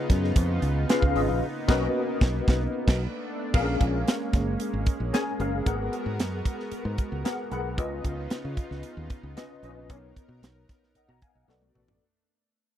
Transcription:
Already playing: C#3 B3 C#4 D#4 F4 G#4 B4 D#5
0.10 F#2, kick, snare, closed hi-hat
0.24 snare
0.36 F2, kick, closed hi-hat
0.62 C#2, closed hi-hat
0.89 C#4 F4 G#4 B4 F5, snare, closed hi-hat
1.02 C#2, kick
1.15 G#1 C#4 F4 G#4 B4 D#5, open hi-hat
1.29 A#1
1.42 A#3 B3
1.68 B1 C#4 F#4 A#4 B4 D#5, kick, snare, crash
2.21 B1, kick, snare
2.48 B1, kick, snare
2.88 B1, kick, snare, crash
3.00 A3 D4
3.53 A#1 G#3 A#3 B3 C#4 G#4 A#4 F5, kick, crash
3.60 C#4
3.81 A#1, kick, closed hi-hat
4.08 snare, closed hi-hat
4.33 F#1, kick, snare, closed hi-hat
4.60 closed hi-hat
4.73 G#1
4.86 kick, closed hi-hat
5.00 A#1
5.13 C#4 G#4 A#4 G#5, snare, closed hi-hat
5.40 F#1 C#4 G#4 A#4 F5, closed hi-hat
5.66 G#1 B3 F#4 G#4 A#4 F#5, kick, closed hi-hat
5.93 closed hi-hat
6.06 G#2
6.19 F#2, snare, closed hi-hat
6.45 kick, closed hi-hat
6.60 snare
6.72 muted fingered electric bass stroke, closed hi-hat
6.85 G#2
6.98 kick, closed hi-hat
7.12 C#2
7.24 B3 G#4 A#4 F#5, snare, closed hi-hat
7.51 B1 B3 G#4 A#4 F#5 B5, closed hi-hat
7.77 C#2 C#3 B3 C#4 D#4 F4 B4 D#5, kick, closed hi-hat
8.04 C#2, kick, closed hi-hat
8.30 snare, closed hi-hat
8.45 C#3
8.57 kick, closed hi-hat
8.71 C#2, snare
8.83 closed hi-hat
8.97 D#2
9.10 kick, closed hi-hat
9.23 C#2
9.36 C#4 F4 B4 D#5, snare, closed hi-hat
9.63 A#1 C#4 F4 B4 D#5, closed hi-hat
9.89 B1 B3 C#4 A#4 C#5, kick, closed hi-hat
9.96 D#4
10.16 kick, closed hi-hat
10.28 B2
10.42 B1, snare, closed hi-hat
10.69 kick, snare, closed hi-hat
10.84 snare
10.95 D#5 F#5, muted fingered electric bass stroke, closed hi-hat
11.09 B2 F#5 A#5
11.22 F5 G#5, kick, closed hi-hat
11.35 B1 D#5 F#5
11.48 B1 A3 B3 D4 F#4 A4 D5, snare
11.62 high tom
11.74 A1 B3 F#4 A4 D5, mid tom
11.88 floor tom

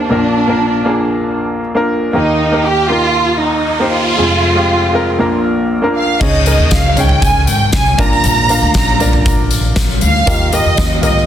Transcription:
Already playing: D#2 D#3 A#3 D4 D#4 G4 A#4 C5
0.09 A#1 A#2 A#3 D4 F4 A#4
0.47 A#3 D4 F4 A#4
0.85 A#3 D4 F4 G#4
1.75 A#3 D4 F4 A#4
2.13 D#2 D#3 A#3 D#4 G4 A#4, noise sweep
2.52 A#3 D#4 G4 A#4
2.65 G4
2.89 A#3 D#4 F4 G4 A#4
3.40 D#4
3.79 A#3 D#4 G4 C5
3.91 F4
4.17 F1 F2 G#3 C4 F4 G#4
4.55 G#3 C4 F4 G4
4.93 G#3 C4 F4 A#4
5.19 A#1 A#2 A#3 D4 F4 A#4
5.82 A#3 D4 F4 A#4
5.97 F5
6.20 C#2 C#3 C#4 D#4 G#4 C#5 D#5, kick, crash, tambourine
6.46 C#4 D#4 G#4 A#4 D#5, closed hi-hat, tambourine
6.59 D#2
6.71 C#2 F5, kick, snare, closed hi-hat, tambourine
6.96 C#4 D#4 G#4 C#5 G5, closed hi-hat, floor tom, tambourine
7.09 floor tom
7.22 G#5, kick, closed hi-hat, tambourine
7.47 G#1 G5, closed hi-hat, tambourine
7.72 C2 G#5, kick, snare, closed hi-hat, tambourine
7.86 tambourine
7.98 A#1 A#2 D4 F4 A#4 D5 A#5, kick, closed hi-hat
8.13 tambourine
8.24 A#1, closed hi-hat, tambourine
8.49 D4 F4 A#4 F5, closed hi-hat, tambourine
8.62 D2
8.74 A#1 A#5, kick, snare, closed hi-hat, tambourine
8.99 D4 F4 A#4 D5, closed hi-hat, floor tom, tambourine
9.13 floor tom, tambourine
9.26 A#1, kick, closed hi-hat, tambourine
9.51 closed hi-hat, tambourine
9.65 tambourine
9.76 kick, snare, closed hi-hat, tambourine
9.90 tambourine
10.01 D2 F5, closed hi-hat
10.16 tambourine
10.26 D#2 D#3 F4 G4 A#4 D#5, kick, closed hi-hat, tambourine
10.52 F4 G4 A#4 D#5, closed hi-hat, tambourine
10.65 F2
10.77 D#2, kick, snare, closed hi-hat, tambourine
11.01 F4 G4 A#4 D#5, closed hi-hat, floor tom
11.06 tambourine
11.19 tambourine

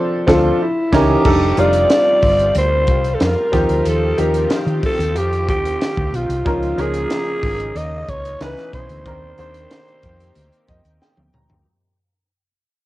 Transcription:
Already playing: F3 C4 D4 A4 C5
0.27 D2 F3 C4 D4 F4 A4, kick, snare
0.63 E4
0.92 C#2 E3 C#4 D#4 G4 A#4, kick, snare, crash
1.25 F1 G3 C4 D4 D#4 F4 A4, kick, crash
1.57 F1 G3 D4 D#4 F4 D5, closed hi-hat
1.73 closed hi-hat
1.90 snare, closed hi-hat
2.22 G1, kick, open hi-hat
2.39 closed hi-hat
2.55 D2 C5, closed hi-hat
2.87 C2, kick, closed hi-hat
3.04 closed hi-hat
3.15 A4
3.20 F2 A#4, snare, closed hi-hat
3.52 D#2 D#3 F3 C4 D#4 G4, kick, snare, closed hi-hat
3.69 D2, closed hi-hat
3.85 D#2 A4, closed hi-hat
4.17 D#2 F3 C4 D#4 G4 A#4, closed hi-hat
4.34 closed hi-hat
4.50 snare, closed hi-hat
4.67 D#3, closed hi-hat
4.83 A4, kick, open hi-hat
4.99 D#2, closed hi-hat
5.15 F2 G4, closed hi-hat
5.33 closed hi-hat
5.49 D#2 G4, kick, closed hi-hat
5.65 closed hi-hat
5.81 snare, closed hi-hat
5.97 D2, kick
6.13 B1 F4, closed hi-hat
6.29 C2, closed hi-hat
6.45 C#2 C#3 F3 A#3 C#4 D#4 A#4, kick, closed hi-hat
6.63 closed hi-hat
6.78 C#2 F3 C#4 D#4 G#4 A#4, closed hi-hat
6.94 closed hi-hat
7.10 snare, closed hi-hat
7.43 G#1, kick, open hi-hat
7.60 closed hi-hat
7.75 D#2 D#5, closed hi-hat
8.08 C#2 C#5, kick, closed hi-hat
8.25 closed hi-hat
8.41 C#2 B2 E3 C#4 D#4 B4, snare, closed hi-hat
8.57 snare, closed hi-hat
8.73 B1 C5, kick, closed hi-hat
8.89 D2, closed hi-hat
9.05 D#2 D#3 A#3 C4 D4 G4 A#4, kick, closed hi-hat
9.38 D#2 D#3 C4 D4 C5, closed hi-hat
9.54 closed hi-hat
9.71 snare, closed hi-hat
9.88 closed hi-hat
10.03 F2, kick, closed hi-hat
10.20 closed hi-hat
10.35 D2, closed hi-hat
10.53 closed hi-hat
10.68 F2 D#5, kick, closed hi-hat
10.85 D#2, closed hi-hat
11.02 G5, snare
11.17 D2, high tom
11.34 D2 A#5, mid tom
11.50 D2, floor tom

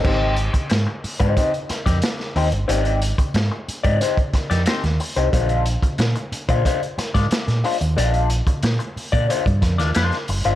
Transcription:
0.04 G#1 C4 D#4 G4 C5, kick, crash
0.36 closed hi-hat
0.53 muted clean electric guitar stroke, kick, closed hi-hat
0.69 G#2, muted clean electric guitar stroke, snare, closed hi-hat
0.87 muted clean electric guitar stroke
1.04 muted fingered electric bass stroke, open hi-hat
1.20 G#2 C4 D#4 G4 C5, kick, closed hi-hat
1.36 C4 D#4 G4 C5, kick, closed hi-hat
1.54 closed hi-hat
1.69 muted clean electric guitar stroke, muted fingered electric bass stroke, snare, closed hi-hat
1.86 F2 C4 D#4 G4 D5, kick, snare, closed hi-hat
2.02 muted clean electric guitar stroke, snare, closed hi-hat
2.20 snare
2.36 D#2 C4 D#4 G4 C5, open hi-hat
2.52 G1, muted clean electric guitar stroke, closed hi-hat
2.68 G#1 C4 D#4 G4 D5, closed hi-hat
2.85 closed hi-hat
3.02 closed hi-hat
3.18 muted clean electric guitar stroke, kick, closed hi-hat
3.34 G#2, muted clean electric guitar stroke, snare, closed hi-hat
3.51 muted clean electric guitar stroke
3.68 muted fingered electric bass stroke, closed hi-hat
3.83 G#2 C4 D#4 G4 D5, kick, closed hi-hat
4.01 C4 D#4 G4 C5, closed hi-hat
4.17 kick, closed hi-hat
4.33 muted fingered electric bass stroke, muted clean electric guitar stroke, kick, snare, closed hi-hat
4.50 F2 C4 D#4 G4 D5, snare, closed hi-hat
4.66 C4 D#4 G4 C5, snare, closed hi-hat
4.84 D#2, snare, closed hi-hat
5.00 muted clean electric guitar stroke, open hi-hat
5.16 C2 C4 D#4 G4 C5, closed hi-hat
5.32 A#1 G#3 D4 F4 C5, kick, closed hi-hat
5.49 closed hi-hat
5.66 closed hi-hat
5.82 muted clean electric guitar stroke, kick, closed hi-hat
5.98 A#2, muted clean electric guitar stroke, snare, closed hi-hat
6.15 muted clean electric guitar stroke, closed hi-hat
6.32 muted fingered electric bass stroke, closed hi-hat
6.49 A#2 G#3 D4 F4 C5, kick, closed hi-hat
6.65 G#3 D4 F4 C5, kick, closed hi-hat
6.83 closed hi-hat
6.98 muted fingered electric bass stroke, muted clean electric guitar stroke, snare, closed hi-hat
7.14 G#2 G#3 D4 F4 D5, kick, snare, closed hi-hat
7.31 muted fingered electric bass stroke, muted clean electric guitar stroke, snare, closed hi-hat
7.48 A#2, snare, closed hi-hat
7.64 G#3 D4 F4 C5, open hi-hat
7.81 D#2, muted clean electric guitar stroke, closed hi-hat
7.97 A#1 G#3 D4 F4 D5, closed hi-hat
8.14 closed hi-hat
8.30 closed hi-hat
8.47 muted clean electric guitar stroke, kick, closed hi-hat
8.63 A#2, muted clean electric guitar stroke, snare, closed hi-hat
8.79 muted clean electric guitar stroke, closed hi-hat
8.96 muted fingered electric bass stroke, open hi-hat
9.12 A#2 G#3 D4 F4 D5, kick, closed hi-hat
9.29 G#3 D4 F4 C5, closed hi-hat
9.46 G2, kick, closed hi-hat
9.62 F2, muted clean electric guitar stroke, kick, snare, closed hi-hat
9.78 D#2 G#3 D4 F4 D5, snare, closed hi-hat
9.95 F2 G#3 D4 F4 C5, snare, closed hi-hat
10.12 snare, closed hi-hat
10.28 F#1, muted clean electric guitar stroke, open hi-hat
10.44 G1 G#3 D4 F4 C5, closed hi-hat

